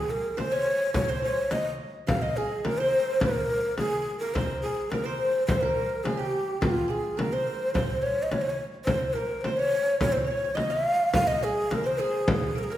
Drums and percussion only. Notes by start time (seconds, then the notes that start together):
0.38 frame drum
0.94 frame drum
1.51 frame drum
2.08 frame drum
2.65 frame drum
3.21 frame drum
3.78 frame drum
4.35 frame drum
4.92 frame drum
5.48 frame drum
6.05 frame drum
6.62 frame drum
7.19 frame drum
7.75 frame drum
8.31 frame drum
8.87 frame drum
9.44 frame drum
10.01 frame drum
10.57 frame drum
11.14 frame drum
11.71 frame drum
12.28 frame drum